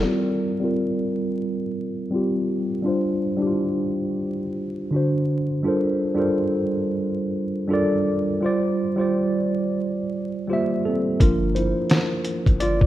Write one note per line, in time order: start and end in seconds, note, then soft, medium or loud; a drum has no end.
0.03 0.43 G3 medium
0.03 0.44 C4 medium
0.03 0.45 F4 medium
0.08 0.46 A#4 medium
0.60 1.64 G3 medium
0.60 1.65 C4 medium
0.60 1.66 F4 medium
0.65 1.67 A#4 medium
2.10 2.68 G3 medium
2.10 2.69 C4 medium
2.10 2.70 F4 medium
2.15 2.70 G4 medium
2.82 3.23 G3 medium
2.82 3.24 D4 medium
2.82 3.25 F4 medium
2.88 3.25 C5 medium
3.37 4.42 G3 medium
3.37 4.43 D4 medium
3.37 3.45 E4 medium
3.42 4.45 G4 medium
3.47 4.47 F4 medium
4.91 5.48 D3 medium
4.91 5.48 D4 medium
4.91 5.49 F#4 medium
4.96 5.50 C5 medium
5.63 6.03 G3 medium
5.63 6.03 D4 medium
5.63 6.04 F4 medium
5.63 6.04 A4 medium
5.67 6.05 A#4 medium
5.67 6.05 C5 medium
6.14 7.21 G3 medium
6.14 7.21 D4 medium
6.14 7.22 F4 medium
6.14 7.22 A4 medium
6.19 7.23 A#4 medium
6.19 7.23 C5 medium
7.68 8.26 G3 medium
7.68 8.26 D4 medium
7.68 8.27 F4 medium
7.68 8.27 A4 medium
7.72 8.28 A#4 medium
7.72 8.28 D5 medium
8.40 8.81 G3 medium
8.40 8.82 F4 medium
8.44 8.83 C5 medium
8.44 8.84 D5 medium
8.96 10.01 G3 medium
8.96 10.02 F4 medium
8.96 10.03 C5 medium
9.01 10.04 D5 medium
10.48 11.05 G3 medium
10.48 11.06 F4 medium
10.48 10.86 G4 medium
10.48 11.07 C5 medium
10.53 10.84 A#3 medium
10.53 11.08 E5 medium
10.86 11.03 C4 medium
10.86 11.01 A4 medium
11.20 11.73 G1 loud
11.20 12.87 F3 medium
11.20 12.87 A#3 soft
11.20 12.87 D4 medium
11.20 11.54 F4 medium
11.20 11.53 A#4 medium
11.20 kick loud
11.20 closed hi-hat medium
11.55 12.57 E4 medium
11.55 12.63 C5 medium
11.55 closed hi-hat medium
11.90 snare loud
11.90 closed hi-hat medium
12.25 closed hi-hat medium
12.46 12.87 G1 medium
12.46 kick medium
12.46 closed hi-hat soft
12.60 12.87 F4 medium
12.60 12.87 D5 loud
12.60 closed hi-hat medium
12.81 kick medium